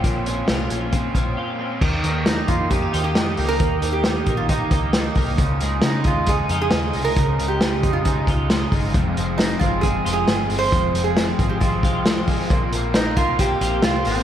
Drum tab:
CC |--------|x-------|--------|--------|
HH |xxxxxx--|-xxxxxxo|xxxxxxxo|xxxxxxxo|
SD |--o-----|--o---o-|--o---o-|--o---o-|
BD |o---oo--|o--oo---|o--ooo-o|o--oo---|

CC |--------|--------|--------|--------|
HH |xxxxxxxo|xxxxxxxo|xxxxxxxo|xxxxxxxo|
SD |--o---o-|--o---o-|--o---o-|--o---o-|
BD |o--ooo-o|o--oo---|o--ooo-o|o--oo---|